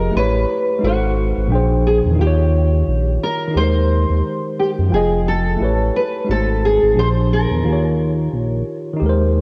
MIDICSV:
0, 0, Header, 1, 4, 480
1, 0, Start_track
1, 0, Tempo, 681818
1, 1542, Time_signature, 4, 2, 24, 8
1, 6625, End_track
2, 0, Start_track
2, 0, Title_t, "Nylon-string guitar"
2, 0, Program_c, 0, 24
2, 0, Note_on_c, 0, 70, 84
2, 115, Note_off_c, 0, 70, 0
2, 118, Note_on_c, 0, 71, 89
2, 594, Note_on_c, 0, 66, 80
2, 604, Note_off_c, 0, 71, 0
2, 1040, Note_off_c, 0, 66, 0
2, 1315, Note_on_c, 0, 68, 69
2, 1378, Note_off_c, 0, 68, 0
2, 1556, Note_on_c, 0, 67, 80
2, 2276, Note_on_c, 0, 70, 86
2, 2290, Note_off_c, 0, 67, 0
2, 2493, Note_off_c, 0, 70, 0
2, 2513, Note_on_c, 0, 72, 104
2, 3199, Note_off_c, 0, 72, 0
2, 3234, Note_on_c, 0, 67, 68
2, 3297, Note_off_c, 0, 67, 0
2, 3475, Note_on_c, 0, 68, 74
2, 3713, Note_off_c, 0, 68, 0
2, 3715, Note_on_c, 0, 69, 84
2, 4160, Note_off_c, 0, 69, 0
2, 4196, Note_on_c, 0, 71, 82
2, 4412, Note_off_c, 0, 71, 0
2, 4439, Note_on_c, 0, 69, 93
2, 4677, Note_off_c, 0, 69, 0
2, 4681, Note_on_c, 0, 68, 82
2, 4917, Note_off_c, 0, 68, 0
2, 4920, Note_on_c, 0, 72, 102
2, 4982, Note_off_c, 0, 72, 0
2, 5160, Note_on_c, 0, 70, 88
2, 6083, Note_off_c, 0, 70, 0
2, 6625, End_track
3, 0, Start_track
3, 0, Title_t, "Tine electric piano"
3, 0, Program_c, 1, 4
3, 0, Control_c, 1, 64, 127
3, 0, Note_on_c, 1, 53, 79
3, 0, Note_on_c, 1, 65, 70
3, 0, Note_on_c, 1, 67, 77
3, 0, Note_on_c, 1, 68, 80
3, 0, Note_on_c, 1, 75, 88
3, 78, Note_on_c, 1, 57, 69
3, 91, Note_off_c, 1, 53, 0
3, 92, Note_on_c, 1, 64, 62
3, 97, Note_off_c, 1, 65, 0
3, 98, Note_off_c, 1, 67, 0
3, 107, Note_on_c, 1, 67, 55
3, 111, Note_off_c, 1, 68, 0
3, 112, Control_c, 1, 64, 0
3, 118, Note_off_c, 1, 75, 0
3, 120, Note_on_c, 1, 71, 62
3, 134, Note_on_c, 1, 73, 73
3, 247, Control_c, 1, 64, 127
3, 557, Note_on_c, 1, 56, 66
3, 570, Note_off_c, 1, 57, 0
3, 571, Note_on_c, 1, 63, 65
3, 577, Note_off_c, 1, 64, 0
3, 584, Note_off_c, 1, 67, 0
3, 584, Note_on_c, 1, 66, 57
3, 590, Control_c, 1, 64, 0
3, 591, Note_off_c, 1, 71, 0
3, 598, Note_off_c, 1, 73, 0
3, 599, Note_on_c, 1, 69, 65
3, 613, Note_on_c, 1, 72, 78
3, 721, Control_c, 1, 64, 127
3, 1037, Note_on_c, 1, 46, 66
3, 1048, Note_on_c, 1, 53, 64
3, 1049, Note_off_c, 1, 56, 0
3, 1056, Note_off_c, 1, 63, 0
3, 1059, Note_on_c, 1, 62, 60
3, 1063, Note_off_c, 1, 66, 0
3, 1069, Control_c, 1, 64, 0
3, 1070, Note_off_c, 1, 69, 0
3, 1071, Note_on_c, 1, 79, 59
3, 1077, Note_off_c, 1, 72, 0
3, 1082, Note_on_c, 1, 68, 59
3, 1093, Note_on_c, 1, 72, 75
3, 1192, Control_c, 1, 64, 127
3, 1488, Note_on_c, 1, 51, 72
3, 1515, Note_on_c, 1, 63, 60
3, 1529, Note_off_c, 1, 46, 0
3, 1535, Note_off_c, 1, 53, 0
3, 1540, Note_off_c, 1, 62, 0
3, 1544, Note_on_c, 1, 65, 63
3, 1546, Note_off_c, 1, 79, 0
3, 1552, Note_off_c, 1, 68, 0
3, 1552, Control_c, 1, 64, 0
3, 1557, Note_off_c, 1, 72, 0
3, 1571, Note_on_c, 1, 67, 60
3, 1598, Note_on_c, 1, 73, 76
3, 1664, Control_c, 1, 64, 127
3, 2440, Note_off_c, 1, 51, 0
3, 2448, Note_on_c, 1, 51, 63
3, 2463, Note_off_c, 1, 63, 0
3, 2471, Note_on_c, 1, 63, 59
3, 2484, Note_off_c, 1, 65, 0
3, 2484, Note_off_c, 1, 67, 0
3, 2493, Note_on_c, 1, 67, 60
3, 2510, Control_c, 1, 64, 0
3, 2511, Note_off_c, 1, 73, 0
3, 2516, Note_on_c, 1, 56, 63
3, 2537, Note_on_c, 1, 70, 58
3, 2560, Note_on_c, 1, 72, 71
3, 2648, Control_c, 1, 64, 127
3, 3415, Note_off_c, 1, 51, 0
3, 3427, Note_off_c, 1, 63, 0
3, 3436, Note_on_c, 1, 53, 66
3, 3438, Note_off_c, 1, 67, 0
3, 3450, Note_off_c, 1, 56, 0
3, 3450, Note_on_c, 1, 65, 53
3, 3461, Note_off_c, 1, 70, 0
3, 3463, Note_on_c, 1, 79, 63
3, 3471, Control_c, 1, 64, 0
3, 3472, Note_off_c, 1, 72, 0
3, 3477, Note_on_c, 1, 80, 61
3, 3491, Note_on_c, 1, 75, 73
3, 3592, Control_c, 1, 64, 127
3, 3917, Note_on_c, 1, 57, 67
3, 3929, Note_off_c, 1, 53, 0
3, 3931, Note_on_c, 1, 64, 58
3, 3936, Note_off_c, 1, 65, 0
3, 3943, Note_off_c, 1, 79, 0
3, 3944, Note_on_c, 1, 67, 58
3, 3950, Note_off_c, 1, 80, 0
3, 3950, Control_c, 1, 64, 0
3, 3956, Note_off_c, 1, 75, 0
3, 3958, Note_on_c, 1, 71, 61
3, 3972, Note_on_c, 1, 73, 68
3, 4064, Control_c, 1, 64, 127
3, 4395, Note_on_c, 1, 56, 59
3, 4409, Note_off_c, 1, 57, 0
3, 4410, Note_on_c, 1, 63, 59
3, 4416, Note_off_c, 1, 64, 0
3, 4423, Note_off_c, 1, 67, 0
3, 4423, Note_on_c, 1, 66, 57
3, 4429, Control_c, 1, 64, 0
3, 4430, Note_off_c, 1, 71, 0
3, 4436, Note_on_c, 1, 57, 60
3, 4437, Note_off_c, 1, 73, 0
3, 4451, Note_on_c, 1, 72, 67
3, 4557, Control_c, 1, 64, 127
3, 4875, Note_on_c, 1, 46, 60
3, 4885, Note_on_c, 1, 53, 58
3, 4889, Note_off_c, 1, 56, 0
3, 4896, Note_off_c, 1, 63, 0
3, 4897, Note_on_c, 1, 62, 53
3, 4902, Note_off_c, 1, 66, 0
3, 4908, Note_on_c, 1, 67, 55
3, 4909, Note_off_c, 1, 57, 0
3, 4910, Control_c, 1, 64, 0
3, 4916, Note_off_c, 1, 72, 0
3, 4919, Note_on_c, 1, 68, 56
3, 4930, Note_on_c, 1, 72, 68
3, 5028, Control_c, 1, 64, 127
3, 5330, Note_on_c, 1, 51, 62
3, 5358, Note_on_c, 1, 63, 63
3, 5368, Note_off_c, 1, 46, 0
3, 5373, Note_off_c, 1, 53, 0
3, 5379, Note_off_c, 1, 62, 0
3, 5385, Note_off_c, 1, 67, 0
3, 5386, Note_on_c, 1, 65, 64
3, 5391, Note_off_c, 1, 68, 0
3, 5392, Control_c, 1, 64, 0
3, 5396, Note_off_c, 1, 72, 0
3, 5414, Note_on_c, 1, 67, 59
3, 5441, Note_on_c, 1, 73, 65
3, 5501, Control_c, 1, 64, 127
3, 6282, Note_off_c, 1, 51, 0
3, 6290, Note_on_c, 1, 51, 70
3, 6304, Note_off_c, 1, 63, 0
3, 6312, Note_on_c, 1, 63, 73
3, 6325, Note_off_c, 1, 65, 0
3, 6327, Note_off_c, 1, 67, 0
3, 6335, Note_on_c, 1, 67, 69
3, 6351, Control_c, 1, 64, 0
3, 6353, Note_off_c, 1, 73, 0
3, 6357, Note_on_c, 1, 56, 72
3, 6379, Note_on_c, 1, 70, 70
3, 6402, Note_on_c, 1, 72, 83
3, 6452, Control_c, 1, 64, 127
3, 6625, Note_off_c, 1, 51, 0
3, 6625, Note_off_c, 1, 56, 0
3, 6625, Note_off_c, 1, 63, 0
3, 6625, Note_off_c, 1, 67, 0
3, 6625, Note_off_c, 1, 70, 0
3, 6625, Note_off_c, 1, 72, 0
3, 6625, End_track
4, 0, Start_track
4, 0, Title_t, "Analog synth bass"
4, 0, Program_c, 2, 38
4, 0, Note_on_c, 2, 29, 107
4, 77, Note_off_c, 2, 29, 0
4, 109, Note_on_c, 2, 33, 103
4, 322, Note_off_c, 2, 33, 0
4, 588, Note_on_c, 2, 32, 96
4, 938, Note_off_c, 2, 32, 0
4, 968, Note_on_c, 2, 32, 76
4, 1055, Note_off_c, 2, 32, 0
4, 1066, Note_on_c, 2, 34, 101
4, 1417, Note_off_c, 2, 34, 0
4, 1447, Note_on_c, 2, 40, 92
4, 1534, Note_off_c, 2, 40, 0
4, 1546, Note_on_c, 2, 39, 104
4, 1996, Note_off_c, 2, 39, 0
4, 2027, Note_on_c, 2, 34, 91
4, 2241, Note_off_c, 2, 34, 0
4, 2504, Note_on_c, 2, 39, 91
4, 2856, Note_off_c, 2, 39, 0
4, 2886, Note_on_c, 2, 39, 80
4, 2974, Note_off_c, 2, 39, 0
4, 3369, Note_on_c, 2, 42, 82
4, 3455, Note_off_c, 2, 42, 0
4, 3467, Note_on_c, 2, 29, 108
4, 3916, Note_off_c, 2, 29, 0
4, 3946, Note_on_c, 2, 33, 94
4, 4160, Note_off_c, 2, 33, 0
4, 4428, Note_on_c, 2, 32, 86
4, 4778, Note_off_c, 2, 32, 0
4, 4807, Note_on_c, 2, 32, 82
4, 4894, Note_off_c, 2, 32, 0
4, 4908, Note_on_c, 2, 34, 92
4, 5258, Note_off_c, 2, 34, 0
4, 5288, Note_on_c, 2, 40, 89
4, 5375, Note_off_c, 2, 40, 0
4, 5389, Note_on_c, 2, 39, 99
4, 5837, Note_off_c, 2, 39, 0
4, 5867, Note_on_c, 2, 34, 90
4, 6081, Note_off_c, 2, 34, 0
4, 6348, Note_on_c, 2, 39, 89
4, 6625, Note_off_c, 2, 39, 0
4, 6625, End_track
0, 0, End_of_file